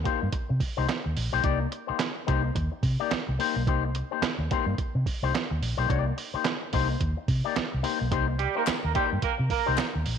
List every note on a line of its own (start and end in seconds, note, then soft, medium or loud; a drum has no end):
0.04 0.27 A#3 medium
0.04 0.21 D#4 medium
0.04 0.21 G4 loud
0.04 0.20 C5 medium
0.04 kick loud
0.04 closed hi-hat medium
0.21 0.31 G2 medium
0.21 muted clean electric guitar stroke soft
0.32 muted clean electric guitar stroke soft
0.32 muted fingered electric bass stroke soft
0.32 kick loud
0.32 closed hi-hat medium
0.49 0.58 C3 medium
0.49 muted clean electric guitar stroke soft
0.60 kick medium
0.60 open hi-hat medium
0.77 0.86 C2 medium
0.77 0.87 A#3 medium
0.77 0.86 D#4 medium
0.77 0.87 G4 medium
0.77 0.88 C5 medium
0.88 muted clean electric guitar stroke soft
0.88 snare medium
0.88 clap medium
0.88 closed hi-hat medium
1.04 1.14 D#2 medium
1.04 muted clean electric guitar stroke soft
1.17 1.29 A#1 medium
1.17 open hi-hat medium
1.33 1.42 B1 medium
1.33 1.42 A#3 medium
1.33 1.43 D#4 medium
1.33 1.43 G4 medium
1.33 1.44 C5 medium
1.43 1.65 C2 medium
1.43 1.66 A#3 medium
1.43 1.60 D#4 medium
1.43 1.60 G4 medium
1.43 1.60 D5 loud
1.43 kick loud
1.43 closed hi-hat medium
1.60 muted clean electric guitar stroke soft
1.71 muted clean electric guitar stroke soft
1.71 closed hi-hat medium
1.87 1.98 A#3 soft
1.87 1.98 D#4 medium
1.87 1.99 G4 medium
1.87 1.99 C5 medium
1.87 muted fingered electric bass stroke soft
1.99 muted clean electric guitar stroke soft
1.99 snare loud
1.99 clap medium
1.99 closed hi-hat medium
2.15 muted clean electric guitar stroke soft
2.27 2.49 C2 medium
2.27 2.50 A#3 medium
2.27 2.43 D#4 loud
2.27 2.42 G4 loud
2.27 2.41 C5 medium
2.27 kick loud
2.27 closed hi-hat medium
2.43 muted clean electric guitar stroke soft
2.55 2.68 D#2 medium
2.55 muted clean electric guitar stroke medium
2.55 kick medium
2.55 closed hi-hat medium
2.72 muted clean electric guitar stroke soft
2.83 2.96 C3 loud
2.83 kick medium
2.83 open hi-hat medium
3.00 3.10 A#3 medium
3.00 3.11 D#4 medium
3.00 3.11 G4 medium
3.00 3.12 D5 medium
3.11 muted fingered electric bass stroke soft
3.11 snare loud
3.11 clap medium
3.11 closed hi-hat medium
3.29 3.37 C2 medium
3.29 muted clean electric guitar stroke soft
3.39 3.61 A#3 medium
3.39 3.56 D#4 medium
3.39 3.55 G4 medium
3.39 3.55 C5 medium
3.39 open hi-hat medium
3.56 3.67 B1 medium
3.56 muted clean electric guitar stroke soft
3.67 4.01 C2 medium
3.67 3.89 A#3 medium
3.67 3.85 D#4 medium
3.67 3.84 G4 medium
3.67 3.83 C5 medium
3.67 kick loud
3.67 closed hi-hat medium
3.85 muted clean electric guitar stroke soft
3.95 muted clean electric guitar stroke medium
3.95 closed hi-hat medium
4.11 4.22 A#3 medium
4.11 4.22 D#4 medium
4.11 4.23 G4 medium
4.11 4.23 C5 medium
4.22 muted fingered electric bass stroke soft
4.22 muted clean electric guitar stroke soft
4.22 snare loud
4.22 clap medium
4.22 closed hi-hat loud
4.39 4.47 D#2 medium
4.39 muted clean electric guitar stroke medium
4.51 4.73 A#3 medium
4.51 4.67 D#4 medium
4.51 4.66 G4 loud
4.51 4.65 C5 loud
4.51 kick loud
4.51 closed hi-hat medium
4.66 4.75 G2 loud
4.66 muted clean electric guitar stroke soft
4.78 muted clean electric guitar stroke soft
4.78 muted fingered electric bass stroke soft
4.78 kick medium
4.78 closed hi-hat medium
4.95 5.03 C3 loud
4.95 muted clean electric guitar stroke medium
5.06 kick medium
5.06 open hi-hat medium
5.23 5.31 C2 medium
5.23 5.32 A#3 medium
5.23 5.32 D#4 medium
5.23 5.33 G4 medium
5.23 5.33 C5 medium
5.33 muted clean electric guitar stroke soft
5.33 snare loud
5.33 clap medium
5.33 closed hi-hat medium
5.50 5.59 D#2 medium
5.50 muted clean electric guitar stroke soft
5.62 5.74 A#1 medium
5.62 open hi-hat medium
5.77 5.87 B1 medium
5.77 5.87 A#3 medium
5.77 5.88 D#4 medium
5.77 5.89 G4 medium
5.77 5.90 C5 medium
5.88 6.11 C2 medium
5.88 6.11 A#3 medium
5.88 6.06 D#4 medium
5.88 6.05 G4 medium
5.88 6.06 D5 medium
5.88 kick loud
5.88 closed hi-hat medium
6.06 muted clean electric guitar stroke soft
6.17 muted clean electric guitar stroke soft
6.17 open hi-hat medium
6.34 6.44 A#3 medium
6.34 6.44 D#4 medium
6.34 6.45 G4 medium
6.34 6.45 C5 medium
6.34 muted fingered electric bass stroke soft
6.45 muted clean electric guitar stroke soft
6.45 snare loud
6.45 clap medium
6.45 closed hi-hat loud
6.62 muted clean electric guitar stroke medium
6.73 6.94 C2 medium
6.73 6.95 A#3 medium
6.73 6.89 D#4 medium
6.73 6.89 G4 loud
6.73 6.88 C5 loud
6.73 kick loud
6.73 open hi-hat medium
6.89 muted clean electric guitar stroke soft
7.00 7.14 D#2 medium
7.00 muted clean electric guitar stroke soft
7.00 kick medium
7.00 closed hi-hat medium
7.17 muted clean electric guitar stroke soft
7.28 7.41 C3 medium
7.28 kick loud
7.28 open hi-hat medium
7.44 7.54 A#3 medium
7.44 7.55 D#4 medium
7.44 7.55 G4 medium
7.44 7.56 D5 medium
7.56 muted fingered electric bass stroke soft
7.56 snare loud
7.56 clap medium
7.56 closed hi-hat medium
7.72 7.82 C2 medium
7.72 muted clean electric guitar stroke soft
7.83 8.06 A#3 medium
7.83 7.99 D#4 medium
7.83 7.99 G4 medium
7.83 7.98 C5 medium
7.83 open hi-hat medium
7.99 8.12 B1 medium
7.99 muted clean electric guitar stroke medium
8.11 8.45 C2 loud
8.11 8.34 A#3 medium
8.11 8.27 D#4 medium
8.11 8.27 G4 loud
8.11 8.26 C5 loud
8.11 kick loud
8.11 closed hi-hat loud
8.27 muted clean electric guitar stroke medium
8.39 8.53 G3 loud
8.39 8.53 G4 loud
8.39 muted clean electric guitar stroke soft
8.39 closed hi-hat medium
8.55 8.63 A#3 medium
8.55 8.66 A#3 medium
8.55 8.67 D#4 medium
8.55 8.67 G4 medium
8.55 8.63 A#4 medium
8.55 8.68 C5 medium
8.67 muted clean electric guitar stroke soft
8.67 muted fingered electric bass stroke soft
8.67 snare loud
8.67 clap medium
8.67 closed hi-hat loud
8.83 8.93 D#2 medium
8.83 8.92 A#3 medium
8.83 8.92 A#4 medium
8.83 muted clean electric guitar stroke soft
8.94 9.05 G3 medium
8.94 9.17 A#3 medium
8.94 9.11 D#4 medium
8.94 9.05 G4 loud
8.94 9.11 G4 medium
8.94 9.10 C5 medium
8.94 kick loud
8.94 closed hi-hat medium
9.11 9.21 G2 medium
9.11 muted clean electric guitar stroke soft
9.22 9.33 A#3 medium
9.22 9.33 A#4 loud
9.22 muted clean electric guitar stroke soft
9.22 muted fingered electric bass stroke soft
9.22 kick medium
9.22 closed hi-hat medium
9.38 9.48 C3 loud
9.38 muted clean electric guitar stroke soft
9.50 9.73 A#3 medium
9.50 9.73 A#4 loud
9.50 kick medium
9.50 open hi-hat medium
9.66 9.76 C2 medium
9.66 9.77 A#3 medium
9.66 9.77 D#4 medium
9.66 9.77 G4 medium
9.66 9.77 C5 medium
9.78 muted clean electric guitar stroke soft
9.78 snare loud
9.78 clap medium
9.78 closed hi-hat medium
9.94 10.04 D#2 medium
9.94 muted clean electric guitar stroke soft
10.06 10.18 A#1 medium
10.06 open hi-hat medium